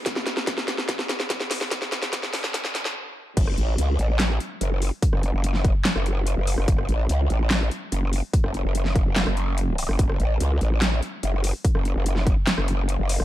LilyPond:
<<
  \new Staff \with { instrumentName = "Wobble bass" } { \clef bass \time 4/4 \key fis \minor \tempo 4 = 145 r1 | r1 | fis,,8 a,,8 cis,8 a,,4 r8 fis,,8. r16 | r16 fis,,8 fis,,4 r8 fis,,4 fis,,8 fis,,16 |
fis,,8 a,,8 cis,8 a,,4 r8 fis,,8. r16 | r16 fis,,8 fis,,4 fis,,8 fis,,4. fis,,16 | fis,,8 a,,8 cis,8 a,,4 r8 fis,,8. r16 | r16 fis,,8 fis,,4 r8 fis,,4 fis,,8 fis,,16 | }
  \new DrumStaff \with { instrumentName = "Drums" } \drummode { \time 4/4 <hh bd sn>16 sn16 <hh sn>16 sn16 <hh bd sn>16 sn16 <hh sn>16 sn16 <hh bd sn>16 sn16 <hh sn>16 sn16 <hh bd sn>16 sn16 <hho sn>16 sn16 | <hh bd sn>16 sn16 <hh sn>16 <hh sn>16 <hh bd sn>16 sn16 <hho sn>16 sn16 <hh bd sn>16 sn16 <hh sn>16 sn16 r4 | <cymc hh bd>16 ss16 hh8 hh8 hh8 <hc hh sn>8 hh8 hh8 hho8 | <hh bd>16 ss16 hh8 hh16 sn16 <hh bd>8 <hc hh sn>16 ss16 hh8 hh8 hho16 ss16 |
<hh bd>16 ss16 hh8 hh8 hh8 <hc hh sn>8 hh8 hh8 hho8 | <hh bd>16 ss16 hh8 hh16 sn16 <hh bd>8 <hc hh sn>16 ss16 hh8 hh8 hho16 ss16 | <hh bd>16 ss16 hh8 hh8 hh8 <hc hh sn>8 hh8 hh8 hho8 | <hh bd>16 ss16 hh8 hh16 sn16 <hh bd>8 <hc hh sn>16 ss16 hh8 hh8 hho16 ss16 | }
>>